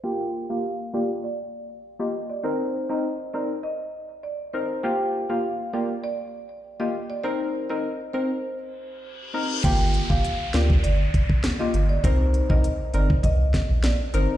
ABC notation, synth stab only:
X:1
M:4/4
L:1/16
Q:1/4=100
K:Gm
V:1 name="Synth stab"
[B,FG]3 [B,FG] z2 [B,FG] z6 [B,FG] z2 | [CEB]3 [CEB] z2 [CEB] z6 z [CEB]2 | [B,FG]3 [B,FG] z2 [B,FG] z6 [B,FG] z2 | [CEB]3 [CEB] z2 [CEB] z6 z [CEB]2 |
[B,FG]3 [B,FG] z2 [B,FG] z6 [B,FG] z2 | [CEB]3 [CEB] z2 [CEB] z6 z [CEB]2 |]